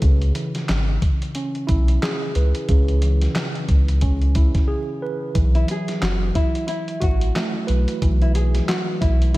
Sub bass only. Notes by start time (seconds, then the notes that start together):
0.02 C#2
0.69 G#1
1.69 B1
2.36 C#2
2.69 C#2
3.69 C#2
5.35 B1
6.02 F#1
7.02 A1
7.69 B1
8.02 B1
9.02 B1